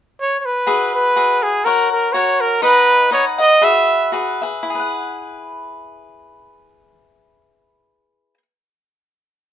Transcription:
0, 0, Header, 1, 3, 480
1, 0, Start_track
1, 0, Key_signature, 4, "major"
1, 0, Tempo, 485437
1, 674, Time_signature, 2, 2, 24, 8
1, 3078, Tempo, 510204
1, 4038, Tempo, 544959
1, 8791, End_track
2, 0, Start_track
2, 0, Title_t, "Cavaquinho"
2, 0, Program_c, 0, 24
2, 657, Note_on_c, 0, 66, 52
2, 662, Note_on_c, 0, 68, 67
2, 664, Note_on_c, 0, 71, 60
2, 668, Note_on_c, 0, 76, 59
2, 1139, Note_off_c, 0, 71, 0
2, 1141, Note_off_c, 0, 68, 0
2, 1143, Note_off_c, 0, 66, 0
2, 1145, Note_off_c, 0, 76, 0
2, 1147, Note_on_c, 0, 66, 50
2, 1151, Note_on_c, 0, 71, 45
2, 1153, Note_on_c, 0, 68, 44
2, 1157, Note_on_c, 0, 76, 47
2, 1633, Note_off_c, 0, 66, 0
2, 1635, Note_off_c, 0, 71, 0
2, 1636, Note_off_c, 0, 68, 0
2, 1637, Note_on_c, 0, 66, 49
2, 1638, Note_off_c, 0, 76, 0
2, 1642, Note_on_c, 0, 70, 61
2, 1648, Note_on_c, 0, 73, 55
2, 1652, Note_on_c, 0, 78, 66
2, 2113, Note_off_c, 0, 66, 0
2, 2113, Note_off_c, 0, 70, 0
2, 2117, Note_on_c, 0, 66, 44
2, 2119, Note_off_c, 0, 73, 0
2, 2125, Note_on_c, 0, 70, 43
2, 2129, Note_off_c, 0, 78, 0
2, 2131, Note_on_c, 0, 73, 55
2, 2133, Note_on_c, 0, 78, 47
2, 2585, Note_off_c, 0, 66, 0
2, 2587, Note_off_c, 0, 70, 0
2, 2589, Note_on_c, 0, 63, 56
2, 2591, Note_on_c, 0, 71, 60
2, 2592, Note_off_c, 0, 73, 0
2, 2596, Note_off_c, 0, 78, 0
2, 2596, Note_on_c, 0, 75, 60
2, 2600, Note_on_c, 0, 78, 66
2, 3059, Note_off_c, 0, 63, 0
2, 3071, Note_on_c, 0, 63, 47
2, 3072, Note_off_c, 0, 71, 0
2, 3072, Note_off_c, 0, 75, 0
2, 3076, Note_on_c, 0, 71, 51
2, 3084, Note_off_c, 0, 78, 0
2, 3084, Note_on_c, 0, 75, 55
2, 3088, Note_on_c, 0, 78, 53
2, 3321, Note_off_c, 0, 78, 0
2, 3331, Note_off_c, 0, 75, 0
2, 3332, Note_off_c, 0, 63, 0
2, 3332, Note_on_c, 0, 78, 43
2, 3334, Note_off_c, 0, 71, 0
2, 3342, Note_on_c, 0, 75, 41
2, 3345, Note_on_c, 0, 71, 35
2, 3541, Note_off_c, 0, 71, 0
2, 3547, Note_off_c, 0, 78, 0
2, 3548, Note_on_c, 0, 66, 56
2, 3549, Note_off_c, 0, 75, 0
2, 3551, Note_on_c, 0, 68, 51
2, 3553, Note_on_c, 0, 71, 62
2, 3558, Note_on_c, 0, 76, 54
2, 4020, Note_off_c, 0, 66, 0
2, 4024, Note_on_c, 0, 66, 43
2, 4029, Note_off_c, 0, 71, 0
2, 4031, Note_off_c, 0, 68, 0
2, 4033, Note_on_c, 0, 71, 49
2, 4035, Note_on_c, 0, 68, 40
2, 4036, Note_off_c, 0, 76, 0
2, 4040, Note_on_c, 0, 76, 49
2, 4277, Note_off_c, 0, 76, 0
2, 4287, Note_off_c, 0, 71, 0
2, 4287, Note_on_c, 0, 76, 48
2, 4290, Note_off_c, 0, 68, 0
2, 4293, Note_off_c, 0, 66, 0
2, 4298, Note_on_c, 0, 71, 42
2, 4301, Note_on_c, 0, 68, 31
2, 4473, Note_on_c, 0, 64, 56
2, 4512, Note_off_c, 0, 76, 0
2, 4517, Note_off_c, 0, 71, 0
2, 4519, Note_off_c, 0, 68, 0
2, 4536, Note_on_c, 0, 68, 53
2, 4580, Note_on_c, 0, 71, 53
2, 4622, Note_on_c, 0, 78, 59
2, 7742, Note_off_c, 0, 64, 0
2, 7773, Note_off_c, 0, 68, 0
2, 7795, Note_off_c, 0, 71, 0
2, 7816, Note_off_c, 0, 78, 0
2, 8791, End_track
3, 0, Start_track
3, 0, Title_t, "Trumpet"
3, 0, Program_c, 1, 56
3, 206, Note_on_c, 1, 73, 67
3, 391, Note_off_c, 1, 73, 0
3, 391, Note_on_c, 1, 73, 47
3, 450, Note_on_c, 1, 71, 67
3, 464, Note_off_c, 1, 73, 0
3, 931, Note_off_c, 1, 71, 0
3, 936, Note_on_c, 1, 71, 67
3, 1413, Note_on_c, 1, 68, 67
3, 1428, Note_off_c, 1, 71, 0
3, 1629, Note_on_c, 1, 70, 76
3, 1644, Note_off_c, 1, 68, 0
3, 1898, Note_off_c, 1, 70, 0
3, 1906, Note_on_c, 1, 70, 71
3, 2106, Note_on_c, 1, 73, 75
3, 2121, Note_off_c, 1, 70, 0
3, 2382, Note_on_c, 1, 70, 74
3, 2397, Note_off_c, 1, 73, 0
3, 2592, Note_off_c, 1, 70, 0
3, 2598, Note_on_c, 1, 71, 90
3, 3046, Note_off_c, 1, 71, 0
3, 3095, Note_on_c, 1, 73, 77
3, 3207, Note_off_c, 1, 73, 0
3, 3350, Note_on_c, 1, 75, 91
3, 3576, Note_on_c, 1, 76, 83
3, 3590, Note_off_c, 1, 75, 0
3, 4051, Note_off_c, 1, 76, 0
3, 8791, End_track
0, 0, End_of_file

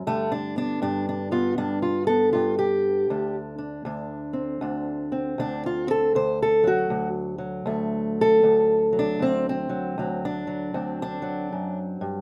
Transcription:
0, 0, Header, 1, 2, 480
1, 0, Start_track
1, 0, Tempo, 763359
1, 37, Time_signature, 4, 2, 24, 8
1, 7678, End_track
2, 0, Start_track
2, 0, Title_t, "Steel-string acoustic guitar"
2, 0, Program_c, 0, 25
2, 42, Note_on_c, 0, 43, 68
2, 45, Note_on_c, 0, 57, 111
2, 48, Note_on_c, 0, 50, 47
2, 199, Note_on_c, 0, 62, 85
2, 200, Note_off_c, 0, 57, 0
2, 352, Note_on_c, 0, 59, 48
2, 357, Note_off_c, 0, 62, 0
2, 363, Note_on_c, 0, 62, 90
2, 506, Note_off_c, 0, 43, 0
2, 511, Note_off_c, 0, 62, 0
2, 514, Note_on_c, 0, 43, 77
2, 519, Note_on_c, 0, 62, 86
2, 677, Note_off_c, 0, 62, 0
2, 684, Note_on_c, 0, 62, 71
2, 818, Note_off_c, 0, 59, 0
2, 826, Note_on_c, 0, 59, 43
2, 828, Note_off_c, 0, 62, 0
2, 830, Note_on_c, 0, 65, 85
2, 986, Note_off_c, 0, 43, 0
2, 990, Note_off_c, 0, 65, 0
2, 992, Note_on_c, 0, 62, 90
2, 993, Note_on_c, 0, 43, 76
2, 1144, Note_off_c, 0, 62, 0
2, 1147, Note_on_c, 0, 65, 83
2, 1298, Note_off_c, 0, 65, 0
2, 1299, Note_off_c, 0, 59, 0
2, 1301, Note_on_c, 0, 69, 105
2, 1313, Note_on_c, 0, 59, 49
2, 1461, Note_off_c, 0, 69, 0
2, 1463, Note_on_c, 0, 65, 82
2, 1467, Note_off_c, 0, 43, 0
2, 1475, Note_on_c, 0, 43, 62
2, 1623, Note_off_c, 0, 65, 0
2, 1626, Note_on_c, 0, 67, 91
2, 1931, Note_off_c, 0, 43, 0
2, 1939, Note_off_c, 0, 59, 0
2, 1950, Note_on_c, 0, 38, 69
2, 1953, Note_on_c, 0, 62, 46
2, 2108, Note_off_c, 0, 67, 0
2, 2251, Note_off_c, 0, 62, 0
2, 2254, Note_on_c, 0, 62, 51
2, 2418, Note_off_c, 0, 38, 0
2, 2421, Note_on_c, 0, 38, 75
2, 2426, Note_off_c, 0, 62, 0
2, 2428, Note_on_c, 0, 62, 49
2, 2724, Note_on_c, 0, 60, 44
2, 2897, Note_off_c, 0, 38, 0
2, 2899, Note_on_c, 0, 38, 79
2, 2904, Note_off_c, 0, 62, 0
2, 2907, Note_on_c, 0, 62, 48
2, 3216, Note_off_c, 0, 60, 0
2, 3218, Note_on_c, 0, 60, 51
2, 3237, Note_off_c, 0, 62, 0
2, 3381, Note_off_c, 0, 38, 0
2, 3383, Note_on_c, 0, 38, 70
2, 3394, Note_on_c, 0, 62, 92
2, 3551, Note_off_c, 0, 62, 0
2, 3560, Note_on_c, 0, 65, 88
2, 3689, Note_off_c, 0, 60, 0
2, 3692, Note_on_c, 0, 60, 48
2, 3712, Note_off_c, 0, 65, 0
2, 3714, Note_on_c, 0, 69, 98
2, 3865, Note_off_c, 0, 38, 0
2, 3868, Note_on_c, 0, 38, 66
2, 3870, Note_off_c, 0, 69, 0
2, 3873, Note_on_c, 0, 72, 94
2, 3887, Note_off_c, 0, 60, 0
2, 3891, Note_off_c, 0, 50, 0
2, 4031, Note_off_c, 0, 72, 0
2, 4040, Note_on_c, 0, 69, 98
2, 4172, Note_on_c, 0, 54, 50
2, 4194, Note_off_c, 0, 69, 0
2, 4195, Note_on_c, 0, 66, 90
2, 4337, Note_off_c, 0, 38, 0
2, 4340, Note_on_c, 0, 38, 71
2, 4453, Note_off_c, 0, 66, 0
2, 4640, Note_off_c, 0, 54, 0
2, 4643, Note_on_c, 0, 54, 50
2, 4812, Note_off_c, 0, 38, 0
2, 4814, Note_on_c, 0, 38, 80
2, 4822, Note_on_c, 0, 57, 52
2, 5164, Note_on_c, 0, 69, 113
2, 5296, Note_off_c, 0, 38, 0
2, 5303, Note_on_c, 0, 38, 69
2, 5605, Note_off_c, 0, 54, 0
2, 5612, Note_on_c, 0, 54, 49
2, 5639, Note_off_c, 0, 69, 0
2, 5652, Note_on_c, 0, 62, 97
2, 5773, Note_off_c, 0, 38, 0
2, 5780, Note_on_c, 0, 38, 65
2, 5797, Note_off_c, 0, 57, 0
2, 5800, Note_on_c, 0, 60, 100
2, 5802, Note_off_c, 0, 62, 0
2, 5956, Note_off_c, 0, 60, 0
2, 5969, Note_on_c, 0, 60, 91
2, 6087, Note_off_c, 0, 54, 0
2, 6095, Note_on_c, 0, 54, 53
2, 6266, Note_off_c, 0, 38, 0
2, 6273, Note_on_c, 0, 38, 70
2, 6274, Note_off_c, 0, 54, 0
2, 6282, Note_on_c, 0, 54, 51
2, 6442, Note_off_c, 0, 60, 0
2, 6445, Note_on_c, 0, 62, 82
2, 6577, Note_off_c, 0, 54, 0
2, 6584, Note_on_c, 0, 54, 46
2, 6747, Note_off_c, 0, 38, 0
2, 6755, Note_on_c, 0, 38, 78
2, 6755, Note_on_c, 0, 60, 51
2, 6922, Note_off_c, 0, 62, 0
2, 6931, Note_on_c, 0, 62, 96
2, 7048, Note_off_c, 0, 54, 0
2, 7055, Note_on_c, 0, 54, 51
2, 7237, Note_off_c, 0, 38, 0
2, 7246, Note_on_c, 0, 42, 60
2, 7406, Note_off_c, 0, 62, 0
2, 7544, Note_off_c, 0, 42, 0
2, 7552, Note_on_c, 0, 43, 61
2, 7678, Note_off_c, 0, 43, 0
2, 7678, Note_off_c, 0, 54, 0
2, 7678, Note_off_c, 0, 60, 0
2, 7678, End_track
0, 0, End_of_file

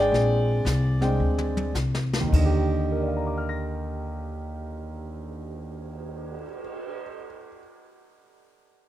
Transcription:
0, 0, Header, 1, 5, 480
1, 0, Start_track
1, 0, Key_signature, -3, "major"
1, 0, Tempo, 530973
1, 120, Time_signature, 4, 2, 24, 8
1, 1083, Tempo, 562852
1, 2043, Tempo, 582524
1, 7450, End_track
2, 0, Start_track
2, 0, Title_t, "Grand piano"
2, 0, Program_c, 0, 0
2, 0, Note_on_c, 0, 56, 70
2, 0, Note_on_c, 0, 60, 60
2, 0, Note_on_c, 0, 62, 60
2, 0, Note_on_c, 0, 68, 69
2, 0, Note_on_c, 0, 74, 114
2, 0, Note_on_c, 0, 79, 75
2, 559, Note_off_c, 0, 56, 0
2, 562, Note_off_c, 0, 60, 0
2, 564, Note_off_c, 0, 62, 0
2, 564, Note_off_c, 0, 79, 0
2, 914, Note_on_c, 0, 56, 61
2, 915, Note_on_c, 0, 60, 57
2, 920, Note_on_c, 0, 62, 50
2, 925, Note_on_c, 0, 79, 64
2, 1520, Note_off_c, 0, 74, 0
2, 1522, Note_off_c, 0, 56, 0
2, 1523, Note_off_c, 0, 60, 0
2, 1525, Note_off_c, 0, 62, 0
2, 1527, Note_off_c, 0, 68, 0
2, 1527, Note_off_c, 0, 79, 0
2, 1941, Note_on_c, 0, 39, 61
2, 2012, Note_on_c, 0, 51, 53
2, 2067, Note_on_c, 0, 75, 65
2, 2080, Note_on_c, 0, 50, 58
2, 2152, Note_on_c, 0, 67, 67
2, 2535, Note_on_c, 0, 70, 45
2, 2595, Note_on_c, 0, 74, 41
2, 2665, Note_on_c, 0, 77, 39
2, 2738, Note_on_c, 0, 82, 40
2, 2821, Note_on_c, 0, 86, 36
2, 2910, Note_on_c, 0, 89, 33
2, 3005, Note_on_c, 0, 94, 36
2, 5344, Note_off_c, 0, 39, 0
2, 5412, Note_off_c, 0, 51, 0
2, 5433, Note_off_c, 0, 75, 0
2, 5479, Note_off_c, 0, 50, 0
2, 5551, Note_off_c, 0, 67, 0
2, 5901, Note_off_c, 0, 70, 0
2, 5961, Note_off_c, 0, 74, 0
2, 6032, Note_off_c, 0, 77, 0
2, 6104, Note_off_c, 0, 82, 0
2, 6187, Note_off_c, 0, 86, 0
2, 6276, Note_off_c, 0, 89, 0
2, 6371, Note_off_c, 0, 94, 0
2, 7450, End_track
3, 0, Start_track
3, 0, Title_t, "Upright bass"
3, 0, Program_c, 1, 32
3, 0, Note_on_c, 1, 32, 91
3, 98, Note_off_c, 1, 32, 0
3, 107, Note_on_c, 1, 34, 84
3, 575, Note_off_c, 1, 34, 0
3, 587, Note_on_c, 1, 36, 94
3, 1064, Note_off_c, 1, 36, 0
3, 1083, Note_on_c, 1, 38, 80
3, 1541, Note_off_c, 1, 38, 0
3, 1549, Note_on_c, 1, 36, 87
3, 2025, Note_off_c, 1, 36, 0
3, 2043, Note_on_c, 1, 39, 86
3, 5409, Note_off_c, 1, 39, 0
3, 7450, End_track
4, 0, Start_track
4, 0, Title_t, "Cymbal swell"
4, 2366, Note_on_c, 9, 59, 41
4, 5786, Note_off_c, 9, 59, 0
4, 7450, End_track
5, 0, Start_track
5, 0, Title_t, "Drums"
5, 127, Note_on_c, 9, 25, 42
5, 127, Note_on_c, 9, 38, 37
5, 218, Note_off_c, 9, 38, 0
5, 595, Note_on_c, 9, 44, 60
5, 599, Note_on_c, 9, 38, 55
5, 685, Note_off_c, 9, 44, 0
5, 689, Note_off_c, 9, 38, 0
5, 919, Note_on_c, 9, 38, 36
5, 1009, Note_off_c, 9, 38, 0
5, 1242, Note_on_c, 9, 47, 44
5, 1327, Note_off_c, 9, 47, 0
5, 1400, Note_on_c, 9, 48, 66
5, 1461, Note_off_c, 9, 25, 0
5, 1485, Note_off_c, 9, 48, 0
5, 1553, Note_on_c, 9, 44, 48
5, 1556, Note_on_c, 9, 38, 60
5, 1638, Note_off_c, 9, 44, 0
5, 1641, Note_off_c, 9, 38, 0
5, 1721, Note_on_c, 9, 38, 65
5, 1806, Note_off_c, 9, 38, 0
5, 1882, Note_on_c, 9, 38, 80
5, 1967, Note_off_c, 9, 38, 0
5, 2045, Note_on_c, 9, 36, 48
5, 2050, Note_on_c, 9, 49, 54
5, 2128, Note_off_c, 9, 36, 0
5, 2133, Note_off_c, 9, 49, 0
5, 7450, End_track
0, 0, End_of_file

